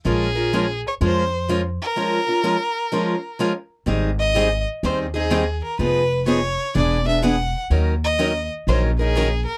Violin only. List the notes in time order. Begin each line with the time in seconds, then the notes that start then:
0.07 G#4
0.87 C#5
1.04 C5
1.82 A#4
4.20 D#5
4.85 C5
5.16 G#4
5.64 A#4
5.80 B4
6.28 C#5
6.77 D5
7.08 E5
7.25 F#5
8.04 D#5
8.68 C5
8.99 G#4
9.46 A#4